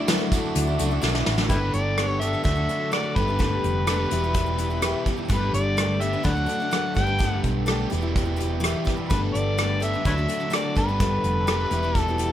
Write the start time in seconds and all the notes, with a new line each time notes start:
Already playing: D3 E4 F#4 D5
0.08 D3 F#3 A3 D4 E4 F#4, snare, closed hi-hat, tambourine
0.21 tambourine
0.32 F#3 A3 D4 E4 F#4, kick, closed hi-hat, tambourine
0.46 tambourine
0.55 D2, closed hi-hat, tambourine
0.67 A3 D4 E4, tambourine
0.78 C#2 F#3 A3 D4 E4 F#4, closed hi-hat, tambourine
0.91 A3 D4 E4, tambourine
1.02 B1 D3 F#3 A3 D4 E4 F#4, snare, tambourine
1.15 A3 D4 E4, snare
1.26 A1, snare, tambourine
1.37 A3 D4 E4, snare, tambourine
1.49 G1 G2 D3 G3 B3 D4 E4 G4 A4 B4, kick, closed hi-hat
1.73 G1 D5, closed hi-hat
1.97 G3 B3 D4 A4, cross-stick, closed hi-hat
2.07 C#5
2.20 D3 G3 B3 D4 G4 A4 E5, closed hi-hat
2.24 G2
2.33 B3 D4 A4
2.44 D2 D3 F#3 A3 D4 F#4 A4 E5, kick, closed hi-hat
2.56 D4 F#4 A4
2.69 D3 D4 F#4 A4, closed hi-hat
2.91 D3 D4 F#4 A4 D5, cross-stick, closed hi-hat
3.15 G1 G2 D3 G3 A3 B3 D4 G4 A4 B4, kick, closed hi-hat
3.27 D4 G4 B4
3.39 G3 A3 D4 G4 B4, kick, closed hi-hat
3.64 F1, closed hi-hat
3.86 G2 D3 G3 A3 B3 D4 G4 B4, cross-stick, closed hi-hat
4.10 E1 E2 B2 E3 G3 B3 E4 G4 B4, closed hi-hat
4.24 E4 G4 B4
4.34 kick, closed hi-hat
4.46 E4 G4 B4
4.58 B3 E4 G4 B4, closed hi-hat
4.70 E4 G4 B4
4.81 E2 B2 E3 G3 B3 E4 G4 B4, cross-stick, closed hi-hat
5.06 B3 E4 G4 B4, kick, closed hi-hat
5.16 E4 G4 B4
5.28 G1 G2 D3 G3 A3 B3 D4 G4 A4 B4, kick, closed hi-hat
5.54 G1 D5, closed hi-hat
5.77 G3 A3 D4 G4 B4, cross-stick, closed hi-hat
6.00 G2 D3 G3 A3 B3 D4 G4 B4 E5, closed hi-hat
6.13 D4 G4 B4
6.23 D2 D3 F#3 A3 D4 F#4 A4 B4 D5 F#5, kick, closed hi-hat
6.27 F#4
6.35 A3 D4 F#4 D5
6.46 A3 D4 F#4 D5, closed hi-hat
6.60 A3 D4 F#4 D5
6.71 D3 F#3 A3 D4 F#4 D5, cross-stick, closed hi-hat
6.94 G1 G2 D3 G3 A3 B3 D4 G4 A4 B4 G5, kick, closed hi-hat
7.07 D4 G4 B4
7.18 G3 A3 D4 G4 B4, kick, closed hi-hat
7.44 B1, kick, closed hi-hat
7.66 G2 D3 G3 A3 D4 G4 B4, cross-stick, closed hi-hat
7.70 B3 D4 G4
7.90 E1 E2 B2 E3 G3 B3 E4 G4 B4, closed hi-hat
7.94 G4
8.01 E4 G4 B4
8.16 kick, closed hi-hat
8.24 E4 G4 B4
8.36 B3 E4 G4 B4, closed hi-hat
8.60 E2 B2 E3 B3 E4 G4 B4, cross-stick, closed hi-hat
8.64 G3 E4 G4
8.85 B3 E4 G4 B4, kick, closed hi-hat
8.96 E4 G4 B4
9.09 G1 G2 D3 G3 A3 B3 D4 G4 A4 B4, kick, closed hi-hat
9.33 G1 D5, closed hi-hat
9.58 G3 A3 D4 A4 B4, cross-stick, closed hi-hat
9.80 G2 D3 G3 A3 B3 D4 G4 A4 B4 E5, closed hi-hat
9.94 D4 A4 B4
10.05 D2 D3 F#3 A3 D4 F#4 A4 B4 C#5 D5 E5, kick, closed hi-hat
10.18 A3 D4 F#4 D5
10.28 A3 D4 F#4 D5, closed hi-hat
10.40 A3 D4 F#4 D5
10.50 D3 F#3 A3 D4 F#4 D5, cross-stick, closed hi-hat
10.54 D5
10.75 G1 G2 D3 G3 A3 B3 D4 G4 A4 B4, kick, closed hi-hat
10.89 D4 A4 B4
11.00 G3 A3 D4 A4 B4, kick, closed hi-hat
11.24 F1, closed hi-hat
11.47 G2 D3 G3 A3 B3 D4 G4 A4 B4, cross-stick, closed hi-hat
11.70 E1 E2 B2 E3 G3 B3 E4 G4 B4, closed hi-hat
11.83 E4 G4 B4
11.95 kick, closed hi-hat
11.99 A4
12.08 E4 G4 B4
12.18 B3 E4 G4 B4, closed hi-hat